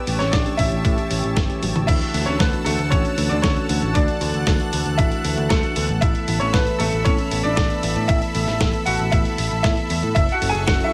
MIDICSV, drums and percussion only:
0, 0, Header, 1, 2, 480
1, 0, Start_track
1, 0, Tempo, 517241
1, 1747, Time_signature, 4, 2, 24, 8
1, 10145, End_track
2, 0, Start_track
2, 0, Title_t, "Drums"
2, 67, Note_on_c, 9, 46, 106
2, 160, Note_off_c, 9, 46, 0
2, 187, Note_on_c, 9, 38, 34
2, 187, Note_on_c, 9, 42, 37
2, 280, Note_off_c, 9, 38, 0
2, 280, Note_off_c, 9, 42, 0
2, 306, Note_on_c, 9, 36, 106
2, 306, Note_on_c, 9, 38, 114
2, 306, Note_on_c, 9, 42, 92
2, 399, Note_off_c, 9, 36, 0
2, 399, Note_off_c, 9, 38, 0
2, 399, Note_off_c, 9, 42, 0
2, 427, Note_on_c, 9, 42, 41
2, 520, Note_off_c, 9, 42, 0
2, 546, Note_on_c, 9, 36, 59
2, 546, Note_on_c, 9, 46, 107
2, 639, Note_off_c, 9, 36, 0
2, 639, Note_off_c, 9, 46, 0
2, 667, Note_on_c, 9, 42, 38
2, 760, Note_off_c, 9, 42, 0
2, 786, Note_on_c, 9, 36, 115
2, 788, Note_on_c, 9, 42, 87
2, 879, Note_off_c, 9, 36, 0
2, 880, Note_off_c, 9, 42, 0
2, 908, Note_on_c, 9, 42, 40
2, 1000, Note_off_c, 9, 42, 0
2, 1027, Note_on_c, 9, 46, 118
2, 1119, Note_off_c, 9, 46, 0
2, 1148, Note_on_c, 9, 42, 39
2, 1241, Note_off_c, 9, 42, 0
2, 1266, Note_on_c, 9, 36, 116
2, 1268, Note_on_c, 9, 38, 111
2, 1268, Note_on_c, 9, 42, 84
2, 1359, Note_off_c, 9, 36, 0
2, 1361, Note_off_c, 9, 38, 0
2, 1361, Note_off_c, 9, 42, 0
2, 1390, Note_on_c, 9, 42, 38
2, 1483, Note_off_c, 9, 42, 0
2, 1509, Note_on_c, 9, 46, 106
2, 1509, Note_on_c, 9, 48, 60
2, 1602, Note_off_c, 9, 46, 0
2, 1602, Note_off_c, 9, 48, 0
2, 1630, Note_on_c, 9, 42, 41
2, 1630, Note_on_c, 9, 47, 75
2, 1723, Note_off_c, 9, 42, 0
2, 1723, Note_off_c, 9, 47, 0
2, 1746, Note_on_c, 9, 36, 125
2, 1749, Note_on_c, 9, 42, 103
2, 1749, Note_on_c, 9, 49, 105
2, 1839, Note_off_c, 9, 36, 0
2, 1842, Note_off_c, 9, 42, 0
2, 1842, Note_off_c, 9, 49, 0
2, 1870, Note_on_c, 9, 42, 43
2, 1963, Note_off_c, 9, 42, 0
2, 1989, Note_on_c, 9, 46, 109
2, 2082, Note_off_c, 9, 46, 0
2, 2109, Note_on_c, 9, 42, 39
2, 2201, Note_off_c, 9, 42, 0
2, 2227, Note_on_c, 9, 36, 119
2, 2229, Note_on_c, 9, 38, 117
2, 2229, Note_on_c, 9, 42, 99
2, 2320, Note_off_c, 9, 36, 0
2, 2322, Note_off_c, 9, 38, 0
2, 2322, Note_off_c, 9, 42, 0
2, 2349, Note_on_c, 9, 42, 43
2, 2442, Note_off_c, 9, 42, 0
2, 2469, Note_on_c, 9, 46, 113
2, 2562, Note_off_c, 9, 46, 0
2, 2589, Note_on_c, 9, 42, 40
2, 2682, Note_off_c, 9, 42, 0
2, 2707, Note_on_c, 9, 36, 125
2, 2709, Note_on_c, 9, 42, 99
2, 2800, Note_off_c, 9, 36, 0
2, 2802, Note_off_c, 9, 42, 0
2, 2830, Note_on_c, 9, 42, 42
2, 2922, Note_off_c, 9, 42, 0
2, 2949, Note_on_c, 9, 46, 122
2, 3042, Note_off_c, 9, 46, 0
2, 3069, Note_on_c, 9, 42, 43
2, 3162, Note_off_c, 9, 42, 0
2, 3187, Note_on_c, 9, 36, 123
2, 3189, Note_on_c, 9, 38, 115
2, 3189, Note_on_c, 9, 42, 92
2, 3280, Note_off_c, 9, 36, 0
2, 3282, Note_off_c, 9, 38, 0
2, 3282, Note_off_c, 9, 42, 0
2, 3308, Note_on_c, 9, 42, 42
2, 3401, Note_off_c, 9, 42, 0
2, 3427, Note_on_c, 9, 46, 113
2, 3520, Note_off_c, 9, 46, 0
2, 3548, Note_on_c, 9, 42, 45
2, 3641, Note_off_c, 9, 42, 0
2, 3666, Note_on_c, 9, 42, 100
2, 3667, Note_on_c, 9, 36, 124
2, 3759, Note_off_c, 9, 42, 0
2, 3760, Note_off_c, 9, 36, 0
2, 3787, Note_on_c, 9, 42, 43
2, 3880, Note_off_c, 9, 42, 0
2, 3908, Note_on_c, 9, 46, 101
2, 4000, Note_off_c, 9, 46, 0
2, 4028, Note_on_c, 9, 42, 39
2, 4121, Note_off_c, 9, 42, 0
2, 4147, Note_on_c, 9, 36, 118
2, 4147, Note_on_c, 9, 38, 123
2, 4147, Note_on_c, 9, 42, 97
2, 4240, Note_off_c, 9, 36, 0
2, 4240, Note_off_c, 9, 38, 0
2, 4240, Note_off_c, 9, 42, 0
2, 4267, Note_on_c, 9, 42, 43
2, 4360, Note_off_c, 9, 42, 0
2, 4388, Note_on_c, 9, 46, 114
2, 4480, Note_off_c, 9, 46, 0
2, 4507, Note_on_c, 9, 42, 41
2, 4600, Note_off_c, 9, 42, 0
2, 4627, Note_on_c, 9, 36, 127
2, 4628, Note_on_c, 9, 42, 97
2, 4720, Note_off_c, 9, 36, 0
2, 4721, Note_off_c, 9, 42, 0
2, 4748, Note_on_c, 9, 42, 42
2, 4841, Note_off_c, 9, 42, 0
2, 4868, Note_on_c, 9, 46, 114
2, 4960, Note_off_c, 9, 46, 0
2, 4988, Note_on_c, 9, 42, 42
2, 5080, Note_off_c, 9, 42, 0
2, 5107, Note_on_c, 9, 36, 125
2, 5107, Note_on_c, 9, 38, 115
2, 5107, Note_on_c, 9, 42, 92
2, 5200, Note_off_c, 9, 36, 0
2, 5200, Note_off_c, 9, 38, 0
2, 5200, Note_off_c, 9, 42, 0
2, 5226, Note_on_c, 9, 42, 43
2, 5319, Note_off_c, 9, 42, 0
2, 5346, Note_on_c, 9, 46, 107
2, 5439, Note_off_c, 9, 46, 0
2, 5467, Note_on_c, 9, 42, 45
2, 5559, Note_off_c, 9, 42, 0
2, 5587, Note_on_c, 9, 36, 127
2, 5587, Note_on_c, 9, 42, 97
2, 5680, Note_off_c, 9, 36, 0
2, 5680, Note_off_c, 9, 42, 0
2, 5706, Note_on_c, 9, 42, 41
2, 5799, Note_off_c, 9, 42, 0
2, 5826, Note_on_c, 9, 46, 101
2, 5919, Note_off_c, 9, 46, 0
2, 5947, Note_on_c, 9, 42, 40
2, 6040, Note_off_c, 9, 42, 0
2, 6067, Note_on_c, 9, 36, 122
2, 6067, Note_on_c, 9, 38, 123
2, 6067, Note_on_c, 9, 42, 96
2, 6160, Note_off_c, 9, 36, 0
2, 6160, Note_off_c, 9, 38, 0
2, 6160, Note_off_c, 9, 42, 0
2, 6187, Note_on_c, 9, 42, 44
2, 6280, Note_off_c, 9, 42, 0
2, 6308, Note_on_c, 9, 46, 104
2, 6400, Note_off_c, 9, 46, 0
2, 6428, Note_on_c, 9, 42, 41
2, 6521, Note_off_c, 9, 42, 0
2, 6547, Note_on_c, 9, 36, 127
2, 6547, Note_on_c, 9, 42, 91
2, 6640, Note_off_c, 9, 36, 0
2, 6640, Note_off_c, 9, 42, 0
2, 6667, Note_on_c, 9, 42, 41
2, 6760, Note_off_c, 9, 42, 0
2, 6787, Note_on_c, 9, 46, 108
2, 6880, Note_off_c, 9, 46, 0
2, 6907, Note_on_c, 9, 42, 43
2, 7000, Note_off_c, 9, 42, 0
2, 7027, Note_on_c, 9, 36, 127
2, 7027, Note_on_c, 9, 38, 122
2, 7027, Note_on_c, 9, 42, 90
2, 7120, Note_off_c, 9, 36, 0
2, 7120, Note_off_c, 9, 38, 0
2, 7120, Note_off_c, 9, 42, 0
2, 7147, Note_on_c, 9, 42, 43
2, 7240, Note_off_c, 9, 42, 0
2, 7267, Note_on_c, 9, 46, 105
2, 7360, Note_off_c, 9, 46, 0
2, 7387, Note_on_c, 9, 42, 43
2, 7480, Note_off_c, 9, 42, 0
2, 7506, Note_on_c, 9, 42, 93
2, 7507, Note_on_c, 9, 36, 123
2, 7599, Note_off_c, 9, 42, 0
2, 7600, Note_off_c, 9, 36, 0
2, 7627, Note_on_c, 9, 42, 40
2, 7720, Note_off_c, 9, 42, 0
2, 7746, Note_on_c, 9, 46, 99
2, 7839, Note_off_c, 9, 46, 0
2, 7866, Note_on_c, 9, 38, 37
2, 7866, Note_on_c, 9, 42, 37
2, 7959, Note_off_c, 9, 38, 0
2, 7959, Note_off_c, 9, 42, 0
2, 7987, Note_on_c, 9, 36, 120
2, 7987, Note_on_c, 9, 38, 122
2, 7987, Note_on_c, 9, 42, 92
2, 8080, Note_off_c, 9, 36, 0
2, 8080, Note_off_c, 9, 38, 0
2, 8080, Note_off_c, 9, 42, 0
2, 8106, Note_on_c, 9, 42, 42
2, 8199, Note_off_c, 9, 42, 0
2, 8226, Note_on_c, 9, 46, 105
2, 8319, Note_off_c, 9, 46, 0
2, 8346, Note_on_c, 9, 42, 40
2, 8439, Note_off_c, 9, 42, 0
2, 8467, Note_on_c, 9, 36, 121
2, 8467, Note_on_c, 9, 42, 89
2, 8560, Note_off_c, 9, 36, 0
2, 8560, Note_off_c, 9, 42, 0
2, 8586, Note_on_c, 9, 42, 40
2, 8679, Note_off_c, 9, 42, 0
2, 8708, Note_on_c, 9, 46, 111
2, 8800, Note_off_c, 9, 46, 0
2, 8827, Note_on_c, 9, 42, 40
2, 8920, Note_off_c, 9, 42, 0
2, 8947, Note_on_c, 9, 36, 127
2, 8948, Note_on_c, 9, 38, 117
2, 8948, Note_on_c, 9, 42, 88
2, 9040, Note_off_c, 9, 36, 0
2, 9040, Note_off_c, 9, 38, 0
2, 9040, Note_off_c, 9, 42, 0
2, 9069, Note_on_c, 9, 42, 39
2, 9162, Note_off_c, 9, 42, 0
2, 9188, Note_on_c, 9, 46, 100
2, 9281, Note_off_c, 9, 46, 0
2, 9309, Note_on_c, 9, 42, 41
2, 9401, Note_off_c, 9, 42, 0
2, 9427, Note_on_c, 9, 36, 121
2, 9429, Note_on_c, 9, 42, 90
2, 9520, Note_off_c, 9, 36, 0
2, 9522, Note_off_c, 9, 42, 0
2, 9549, Note_on_c, 9, 42, 37
2, 9642, Note_off_c, 9, 42, 0
2, 9668, Note_on_c, 9, 46, 103
2, 9761, Note_off_c, 9, 46, 0
2, 9789, Note_on_c, 9, 42, 38
2, 9881, Note_off_c, 9, 42, 0
2, 9907, Note_on_c, 9, 36, 118
2, 9907, Note_on_c, 9, 38, 121
2, 9907, Note_on_c, 9, 42, 90
2, 10000, Note_off_c, 9, 36, 0
2, 10000, Note_off_c, 9, 38, 0
2, 10000, Note_off_c, 9, 42, 0
2, 10027, Note_on_c, 9, 42, 40
2, 10120, Note_off_c, 9, 42, 0
2, 10145, End_track
0, 0, End_of_file